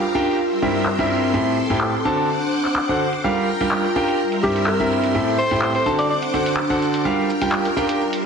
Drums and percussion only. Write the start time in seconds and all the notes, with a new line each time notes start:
0.04 closed hi-hat
0.27 closed hi-hat
0.51 closed hi-hat
0.75 closed hi-hat, cabasa
0.86 clap
1.11 cabasa
1.23 closed hi-hat
1.58 cabasa
1.70 closed hi-hat
1.81 clap
1.94 closed hi-hat
2.06 cabasa
2.18 closed hi-hat, cabasa
2.42 closed hi-hat
2.54 cabasa
2.65 clap, closed hi-hat
2.76 clap
3.01 cabasa
3.13 closed hi-hat, cabasa
3.49 cabasa
3.61 closed hi-hat, cabasa
3.71 clap, cabasa
3.84 closed hi-hat
3.96 cabasa
4.08 closed hi-hat, cabasa
4.20 cabasa
4.32 closed hi-hat
4.44 cabasa
4.56 closed hi-hat, cabasa
4.67 clap, cabasa
4.92 cabasa
5.04 closed hi-hat, cabasa
5.15 cabasa
5.39 cabasa
5.51 closed hi-hat, cabasa
5.62 clap, cabasa
5.75 closed hi-hat
5.87 cabasa
5.99 closed hi-hat, cabasa
6.11 cabasa
6.23 closed hi-hat
6.34 cabasa
6.46 closed hi-hat, cabasa
6.57 clap
6.82 cabasa
6.94 closed hi-hat, cabasa
7.06 cabasa
7.30 cabasa
7.42 closed hi-hat, cabasa
7.52 clap, cabasa
7.65 closed hi-hat
7.77 cabasa
7.89 closed hi-hat, cabasa
8.01 cabasa
8.13 closed hi-hat